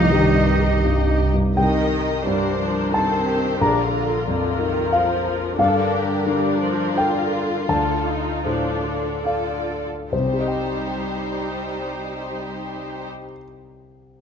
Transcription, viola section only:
0.00 1.32 D#4 soft
0.00 1.32 G4 medium
1.56 2.21 D#3 soft
1.56 2.21 D#4 soft
2.25 2.59 G3 soft
2.25 2.93 D4 soft
2.59 2.92 F3 soft
2.92 3.60 D#3 soft
2.92 3.59 C4 soft
3.60 4.25 D3 soft
3.60 3.92 D4 soft
3.93 5.55 F4 soft
4.26 4.58 D3 soft
4.59 4.92 D#3 soft
4.92 5.58 F3 soft
5.58 6.25 D3 soft
5.58 6.25 D4 soft
6.26 6.62 G3 soft
6.26 6.95 D4 soft
6.61 6.96 F3 soft
6.96 7.67 D3 soft
6.96 7.67 F4 soft
7.68 8.05 D3 soft
7.68 8.43 F4 soft
8.06 8.45 D#4 soft
8.44 8.84 F3 soft
8.44 9.25 D4 soft
8.83 9.22 D3 soft
9.24 9.85 D3 soft
9.24 9.86 F4 soft
10.11 13.07 G3 soft
10.11 13.07 D#4 soft

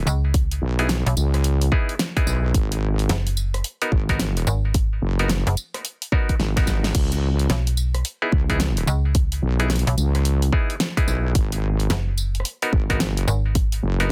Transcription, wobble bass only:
0.62 1.04 B1 loud
1.17 1.70 C#2 medium
2.27 2.53 B1 loud
2.54 3.08 G#1 loud
3.92 4.45 G#1 medium
5.02 5.44 F#1 loud
6.39 6.93 G#1 loud
6.95 7.48 C#2 loud
8.32 8.86 C#2 loud
9.42 9.84 B1 loud
9.97 10.51 C#2 loud
11.07 11.33 B1 loud
11.35 11.88 G#1 loud
12.73 13.26 G#1 medium
13.83 14.12 F#1 loud

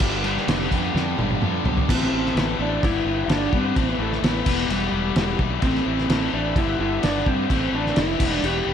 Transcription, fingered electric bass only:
0.01 0.37 G1 medium
0.48 0.66 F1 medium
0.72 0.90 F2 medium
0.95 1.13 F2 loud
1.18 1.36 G1 medium
1.42 1.60 F2 medium
1.64 1.82 B1 medium
1.89 2.07 A1 loud
2.12 2.30 A1 medium
2.35 2.54 A1 medium
2.59 2.77 A1 loud
2.83 3.01 G1 loud
3.05 3.24 G1 medium
3.28 3.47 G1 medium
3.52 3.71 G2 medium
3.77 3.95 A1 loud
3.98 4.17 A1 loud
4.22 4.41 A1 medium
4.46 4.64 E1 medium
4.69 4.87 E1 loud
4.92 5.11 E1 medium
5.16 5.34 E1 medium
5.40 5.58 B1 medium
5.63 5.81 A1 loud
5.86 6.05 A1 medium
6.09 6.28 A1 loud
6.33 6.52 A1 medium
6.55 6.74 G1 loud
6.79 6.98 G1 medium
7.04 7.22 G1 medium
7.26 7.45 G2 medium
7.50 7.68 A1 medium
7.73 7.91 A1 medium
7.97 8.15 F1 medium
8.20 8.38 E1 medium
8.43 8.62 E1 loud
8.67 8.73 E1 medium

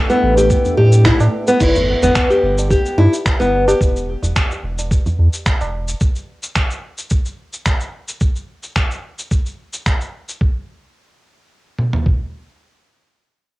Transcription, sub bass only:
0.23 0.57 A1 loud
0.78 1.12 A2 medium
1.20 1.28 A2 medium
1.61 1.95 G1 loud
2.02 2.11 G1 medium
2.43 2.77 G1 loud
2.98 3.08 G2 loud
3.40 3.74 G1 loud
3.81 4.15 E1 medium
4.23 4.31 E1 medium
4.63 4.97 E1 medium
5.18 5.28 E2 medium
5.61 5.94 E1 loud

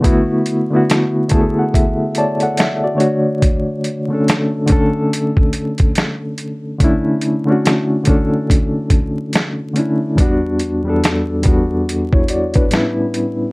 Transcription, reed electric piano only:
0.01 0.60 D3 loud
0.01 0.60 A3 loud
0.01 0.61 B3 loud
0.05 0.62 E4 medium
0.05 0.63 F#4 loud
0.70 1.23 D3 medium
0.70 1.23 A3 medium
0.70 1.24 B3 medium
0.75 1.25 E4 medium
0.75 1.26 F#4 medium
1.28 2.79 D3 medium
1.28 2.80 A3 medium
1.28 2.80 B3 medium
1.28 1.55 A5 medium
1.33 2.81 E4 medium
1.33 1.41 G#4 medium
1.41 2.20 A4 medium
1.59 1.73 F#5 medium
1.74 2.13 E5 medium
2.18 2.42 C#5 medium
2.18 2.41 D5 medium
2.18 2.42 A5 medium
2.43 2.58 A4 medium
2.43 2.57 F#5 medium
2.59 2.83 E5 medium
2.84 3.00 F#4 medium
2.84 3.38 D5 medium
2.95 3.89 D3 medium
2.95 3.90 A3 medium
2.95 3.91 C#5 medium
2.99 3.92 D4 medium
2.99 3.92 F#4 medium
4.08 4.61 D3 medium
4.08 4.62 A3 medium
4.08 4.63 C#4 medium
4.13 4.63 D4 medium
4.13 4.64 A4 medium
4.66 6.17 D3 medium
4.66 6.18 A3 medium
4.66 6.18 C#4 medium
4.71 6.19 D4 medium
4.71 6.20 A4 loud
6.78 7.37 D3 medium
6.78 7.37 A3 medium
6.78 7.38 C#4 medium
6.83 7.39 D4 medium
6.83 7.40 E4 loud
7.45 7.98 D3 medium
7.45 7.99 A3 medium
7.45 8.00 C#4 medium
7.50 8.01 D4 medium
7.50 8.02 F#4 medium
8.04 9.55 D3 medium
8.04 9.55 A3 medium
8.04 9.56 C#4 medium
8.08 9.57 D4 medium
8.08 9.58 A4 medium
9.73 10.12 D3 medium
9.73 10.13 A3 medium
9.73 10.14 C#4 medium
9.78 10.15 D4 medium
9.78 10.15 E4 medium
10.16 10.74 E2 medium
10.16 10.75 G3 medium
10.16 10.76 B3 medium
10.20 10.77 D4 medium
10.20 10.77 F#4 loud
10.83 11.37 E2 medium
10.83 11.37 G3 medium
10.83 11.38 B3 medium
10.88 11.39 D4 medium
10.88 11.40 A4 medium
11.42 12.70 E2 medium
11.42 12.70 G3 medium
11.42 12.71 B3 medium
11.47 11.88 D4 medium
11.47 11.89 F#4 medium
12.13 12.29 E4 medium
12.13 12.29 C#5 medium
12.30 12.55 F#4 medium
12.30 12.55 D5 medium
12.55 12.96 D4 medium
12.55 12.96 B4 medium
12.69 13.46 A2 medium
12.69 13.47 G3 medium
12.69 13.48 B3 medium
12.74 13.48 C#4 medium
12.74 13.49 E4 loud

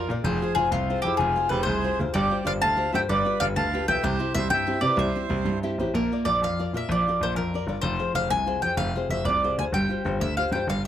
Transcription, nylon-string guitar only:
0.10 0.22 F4 soft
0.10 0.23 A#4 soft
0.10 0.22 D5 soft
0.26 0.56 F3 medium
0.42 0.57 F4 soft
0.42 0.57 G#4 soft
0.42 0.57 C5 soft
0.58 0.83 F4 medium
0.58 0.83 G#4 soft
0.58 0.83 C5 soft
0.74 1.04 C3 medium
0.90 1.05 F4 soft
0.90 1.04 G#4 soft
0.90 1.05 C5 medium
1.05 1.31 F4 soft
1.05 1.30 G#4 soft
1.05 1.31 C5 medium
1.20 1.51 C3 medium
1.36 1.51 F4 medium
1.36 1.51 G#4 soft
1.36 1.51 C5 soft
1.52 1.77 F4 soft
1.52 1.77 G#4 soft
1.52 1.77 C5 soft
1.69 1.99 C3 medium
1.84 1.99 F4 medium
1.84 1.99 G#4 soft
1.84 2.00 C5 medium
2.00 2.12 F4 soft
2.00 2.12 G#4 soft
2.00 2.13 C5 soft
2.15 2.46 G3 medium
2.30 2.43 F4 soft
2.30 2.44 G4 soft
2.30 2.44 C5 soft
2.44 2.71 F4 soft
2.44 2.71 G4 soft
2.44 2.72 C5 soft
2.62 2.93 D3 medium
2.76 2.91 F4 medium
2.76 2.92 G4 soft
2.76 2.93 C5 medium
2.92 3.06 F4 soft
2.92 3.06 G4 soft
2.92 3.06 C5 medium
3.10 3.41 G3 medium
3.25 3.40 F4 soft
3.25 3.40 G4 soft
3.25 3.41 B4 medium
3.41 3.67 F4 soft
3.41 3.67 G4 soft
3.41 3.67 B4 medium
3.57 3.88 D3 medium
3.73 3.87 F4 soft
3.73 3.88 G4 soft
3.73 3.88 B4 medium
3.88 4.01 F4 soft
3.88 4.01 G4 soft
3.88 4.01 B4 medium
4.03 4.34 C3 medium
4.19 4.36 C4 soft
4.19 4.35 E4 soft
4.19 4.36 G4 medium
4.36 4.62 C4 soft
4.36 4.61 E4 soft
4.36 4.62 G4 soft
4.51 4.82 G3 medium
4.67 4.80 C4 medium
4.67 4.80 E4 soft
4.67 4.81 G4 medium
4.81 5.07 C4 soft
4.81 5.08 E4 soft
4.81 5.08 G4 soft
4.97 5.29 G3 medium
5.16 5.28 C4 soft
5.16 5.28 E4 soft
5.16 5.29 G4 soft
5.29 5.55 C4 soft
5.29 5.56 E4 soft
5.29 5.56 G4 medium
5.46 5.77 G3 medium
5.63 5.79 C4 medium
5.63 5.79 E4 soft
5.63 5.79 G4 medium
5.63 5.77 E5 medium
5.79 5.92 C4 soft
5.79 5.92 E4 soft
5.79 5.92 G4 medium
5.79 5.93 C5 medium
5.95 6.25 A#3 medium
6.12 6.25 F4 soft
6.12 6.25 A#4 soft
6.12 6.26 D5 soft
6.26 6.52 F4 soft
6.26 6.52 A#4 soft
6.26 6.53 D5 soft
6.43 6.73 F3 medium
6.59 6.73 F4 soft
6.59 6.74 A#4 soft
6.59 6.74 D5 medium
6.74 6.99 F4 soft
6.74 7.00 A#4 soft
6.74 7.00 D5 soft
6.92 7.21 F3 medium
7.08 7.21 F4 soft
7.08 7.22 A#4 soft
7.08 7.22 D5 soft
7.22 7.47 F4 soft
7.22 7.48 A#4 soft
7.22 7.48 D5 soft
7.38 7.68 F3 medium
7.54 7.67 F4 soft
7.54 7.68 A#4 soft
7.54 7.68 D5 medium
7.68 7.81 F4 soft
7.68 7.81 A#4 soft
7.68 7.81 D5 soft
7.84 8.15 F3 medium
7.99 8.14 F4 soft
7.99 8.14 G#4 soft
7.99 8.14 C5 soft
8.15 8.41 F4 soft
8.15 8.41 G#4 soft
8.15 8.41 C5 medium
8.31 8.62 C3 medium
8.46 8.63 F4 soft
8.46 8.63 G#4 soft
8.46 8.63 C5 medium
8.64 8.89 F4 soft
8.64 8.89 G#4 soft
8.64 8.89 C5 medium
8.80 9.10 C3 medium
8.96 9.11 F4 soft
8.96 9.11 G#4 soft
8.96 9.11 C5 soft
9.12 9.37 F4 soft
9.12 9.37 G#4 soft
9.12 9.37 C5 soft
9.29 9.58 C3 medium
9.44 9.59 F4 soft
9.44 9.59 G#4 soft
9.44 9.59 C5 medium
9.60 9.71 F4 soft
9.60 9.71 G#4 soft
9.60 9.72 C5 soft
9.75 10.05 G3 medium
9.89 10.03 F4 soft
9.89 10.04 G4 soft
9.89 10.05 C5 soft
10.05 10.30 F4 soft
10.05 10.31 G4 soft
10.05 10.31 C5 soft
10.21 10.52 D3 soft
10.38 10.54 F4 soft
10.38 10.53 G4 soft
10.38 10.54 C5 soft
10.55 10.66 F4 soft
10.55 10.66 G4 soft
10.55 10.66 C5 medium
10.69 10.87 G3 medium

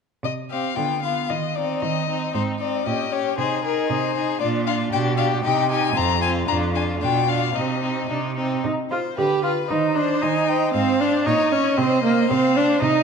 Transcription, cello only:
0.23 0.68 C3 soft
0.77 1.21 D3 soft
1.30 1.74 D#3 soft
1.82 2.26 D#3 soft
2.35 2.78 G#2 soft
2.86 3.30 A#2 soft
3.38 3.82 C3 soft
3.90 4.33 C3 soft
4.42 4.87 A#2 soft
4.93 5.38 B2 soft
5.44 5.90 C3 soft
5.97 6.42 F2 soft
6.48 6.95 F2 soft
7.01 7.49 B2 soft
7.56 8.04 C3 soft
8.10 8.58 C3 soft
8.65 9.09 C3 soft
9.18 9.62 D3 soft
9.70 10.14 D#3 soft
10.23 10.66 D#3 soft
10.74 11.17 G#2 medium
11.26 11.69 A#2 medium
11.78 12.22 C3 medium
12.31 12.73 C3 medium
12.82 13.03 C3 medium

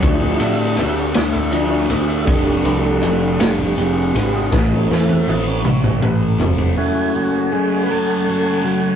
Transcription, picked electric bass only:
0.03 0.37 D2 loud
0.41 0.75 A2 medium
0.77 1.12 D2 medium
1.15 1.50 D2 loud
1.52 1.86 D2 medium
1.90 2.24 D2 medium
2.27 2.62 F1 loud
2.65 2.99 C2 medium
3.02 3.37 F1 medium
3.40 3.74 F1 loud
3.78 4.12 F1 loud
4.15 4.49 G#1 loud
4.52 4.86 A1 loud
4.91 5.24 E2 medium
5.28 5.62 A1 medium
5.65 5.99 A1 medium
6.02 6.36 A1 medium
6.40 6.74 F1 medium

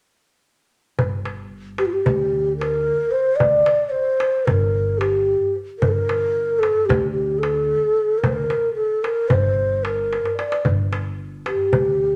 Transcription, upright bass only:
0.99 1.83 G1 medium
2.06 2.90 D2 medium
3.41 3.62 D2 medium
4.48 5.32 G1 medium
5.82 6.66 G1 medium
6.89 7.73 D2 medium
8.23 8.44 D2 medium
9.31 10.15 G1 medium
10.65 11.49 G1 medium
11.73 12.16 D2 medium

